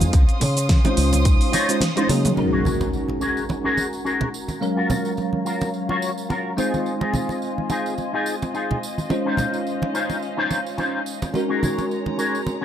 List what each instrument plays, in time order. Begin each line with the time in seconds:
Already playing: tine electric piano G#3 C4 D#4 F4 C5, violin section C5 F5 G#5 D#6
0.01 fingered electric bass F2, muted clean electric guitar stroke, tambourine, high conga, cabasa
0.13 fingered electric bass C#2, violin section C#4 C6 D#6, kick, closed hi-hat, tambourine, muted conga, cabasa
0.29 closed hi-hat, cabasa
0.40 fingered electric bass C#3, muted clean electric guitar stroke, open hi-hat, tambourine, muted conga, high conga, low conga
0.56 muted clean electric guitar stroke, closed hi-hat, tambourine, cabasa
0.68 muted clean electric guitar stroke, kick, snare, closed hi-hat, tambourine, cabasa
0.84 tine electric piano G#3 C#4 D#4 F4 C5, closed hi-hat, muted conga, high conga, cabasa
0.97 fingered electric bass C#2, open hi-hat, tambourine
1.13 closed hi-hat, tambourine, muted conga, cabasa
1.25 kick, closed hi-hat, tambourine, cabasa
1.41 open hi-hat, cabasa
1.52 clean electric guitar D#4 F4 C#5, open hi-hat, tambourine, muted conga
1.69 tine electric piano G#3 C#4 D#4 F4 C5, closed hi-hat, tambourine, cabasa
1.81 snare, closed hi-hat, tambourine, muted conga, cabasa
1.96 tine electric piano G#3 C#4 D#4 F4 C5, clean electric guitar D#4 F4 C5, closed hi-hat, high tom, cabasa
2.08 fingered electric bass C#3, tine electric piano F#3 A#3 C#4 D#4 G#4, open hi-hat, mid tom, tambourine
2.24 muted clean electric guitar stroke, closed hi-hat, mid tom, tambourine, muted conga, high conga, cabasa
2.36 tine electric piano G#3 C#4 D#4 F#4 A#4, violin section G#4 F#5 A#5 C#6, muted clean electric guitar stroke, tambourine, impact, muted conga
2.52 clean electric guitar C#4 F#4 G#4 A#4
2.65 tambourine, high conga, low conga
2.81 tambourine, muted conga
2.93 tambourine
3.08 muted conga, high conga
3.20 clean electric guitar C#4 F#4 G#4 A#4, tambourine
3.37 tambourine
3.49 tambourine, muted conga
3.64 clean electric guitar C#4 F#4 G#4 A#4
3.77 tambourine, muted conga
3.93 tambourine
4.05 clean electric guitar C#4 F#4 G#4 A#4, tambourine
4.21 muted conga, low conga
4.34 tambourine
4.48 muted clean electric guitar stroke, tambourine, muted conga, high conga
4.60 tine electric piano F#3 G#3 C#4 A#4 F5, violin section C#5 F5 A#5, muted clean electric guitar stroke, tambourine
4.76 clean electric guitar F4 F#4 A#4
4.90 tambourine, muted conga, high conga, low conga
5.05 tambourine
5.17 tambourine, muted conga
5.33 high conga
5.45 clean electric guitar F4 F#4 A#4, tambourine
5.61 tambourine, muted conga
5.74 tambourine
5.89 clean electric guitar F4 F#4 C#5, muted conga
6.02 tambourine
6.18 tambourine
6.29 clean electric guitar F4 F#4 A#4, tambourine, muted conga
6.57 tine electric piano G#3 C4 D#4 F4 C5, clean electric guitar D#4 F4 G#4, violin section F4 C5 D#5 G#5, tambourine, muted conga
6.74 tambourine, high conga
6.86 tambourine
7.00 clean electric guitar D#4 F4 G#4, muted conga
7.14 tambourine, high conga, low conga
7.29 tambourine, muted conga
7.42 tambourine
7.58 high conga
7.69 clean electric guitar D#4 F4 G#4, tambourine, muted conga
7.86 tambourine
7.98 tambourine, muted conga
8.13 clean electric guitar D#4 F4 G#4
8.26 tambourine
8.42 tambourine, muted conga
8.54 clean electric guitar D#4 F4 G#4, tambourine
8.71 muted conga, low conga
8.83 tambourine
8.98 muted clean electric guitar stroke, tambourine, high conga
9.10 tine electric piano G#3 C#4 D#4 F4 C5, violin section C#4 F5, muted clean electric guitar stroke, tambourine, muted conga
9.25 clean electric guitar C#4 D#4 F4 C5
9.37 tambourine, muted conga, high conga, low conga
9.54 tambourine
9.67 tambourine
9.82 muted conga, high conga
9.94 clean electric guitar C#4 D#4 F4 C5, tambourine
10.10 tambourine, muted conga
10.22 tambourine
10.37 clean electric guitar C#4 D#4 F4 C5
10.51 tambourine, muted conga
10.66 tambourine
10.78 clean electric guitar C#4 D#4 F4 C5, tambourine, muted conga
11.06 tambourine
11.21 muted clean electric guitar stroke, tambourine, muted conga, high conga
11.33 tine electric piano G#3 C#4 D#4 F#4 A#4, violin section G#3 C#5 A#5, muted clean electric guitar stroke, tambourine, muted conga
11.49 clean electric guitar C#4 F#4 G#4 A#4
11.63 tambourine, high conga, low conga
11.78 tambourine, muted conga
11.91 tambourine
12.06 muted conga, high conga
12.17 clean electric guitar C#4 F#4 G#4 A#4, tambourine
12.35 tambourine
12.47 tambourine, muted conga
12.61 clean electric guitar C#4